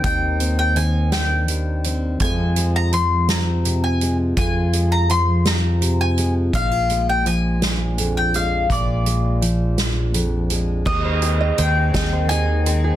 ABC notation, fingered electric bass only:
X:1
M:6/8
L:1/8
Q:3/8=55
K:Bbmix
V:1 name="Fingered electric bass" clef=bass
E,,6 | F,,6 | F,,6 | B,,,6 |
B,,,6 | E,,2 E,, E,,3 |]